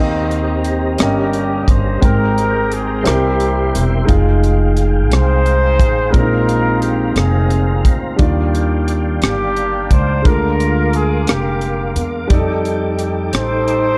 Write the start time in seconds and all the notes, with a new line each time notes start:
Already playing: D#2 D#3 C4 G4 A#4 C5 D#5 F5 A#5
0.00 D#5
0.31 closed hi-hat
0.64 closed hi-hat
0.98 G1 G2 A#3 C#4 G4 A#4 D#5, cross-stick, closed hi-hat
1.33 closed hi-hat
1.67 G1 C5, kick, closed hi-hat
2.00 G#1 G#2 G#3 C4 A#4 C5 G5 A#5, kick, closed hi-hat
2.04 D#4 G4 A#4
2.38 closed hi-hat
2.72 G#4, closed hi-hat
3.01 C3 G3 C4 A#4 E5 C6
3.05 C2 A#3 E4 G4 A#4, cross-stick, closed hi-hat
3.40 closed hi-hat
3.75 E1, closed hi-hat
4.04 G#3 D#4 F5
4.08 F1 F4 G#4, kick, closed hi-hat
4.43 closed hi-hat
4.77 closed hi-hat
5.11 C2 D#4 G#4 C5, cross-stick, closed hi-hat
5.46 closed hi-hat
5.79 A1, kick, closed hi-hat
6.10 A#1 A#2 G#3 C4 D#4 F4 A#4 C5 F5 A#5, kick, closed hi-hat
6.15 D4 A#4
6.21 D#4
6.49 closed hi-hat
6.81 G4, closed hi-hat
7.16 F1 C4 D#4 G#4, cross-stick, closed hi-hat
7.50 closed hi-hat
7.85 D2, kick, closed hi-hat
8.16 D#2 D#3 G3 D4 D5 F5 G5, kick, closed hi-hat
8.20 F4 D5
8.55 closed hi-hat
8.88 closed hi-hat
9.22 G1 A#3 D4 G4, cross-stick, closed hi-hat
9.56 closed hi-hat
9.91 C#2 C5, kick, closed hi-hat
10.22 D2 D3 G#3 D4 A#4 F5 D6, kick, closed hi-hat
10.26 F4 A#4
10.60 closed hi-hat
10.93 G#4, closed hi-hat
11.27 F1 A#3 G4, cross-stick, closed hi-hat
11.61 closed hi-hat
11.96 E2, closed hi-hat
12.28 F2 G3 D#4 A4 D5 G5, kick, closed hi-hat
12.32 D#4 A4
12.65 closed hi-hat
12.99 closed hi-hat
13.33 A1 D#4 A4 C5, cross-stick, closed hi-hat
13.68 closed hi-hat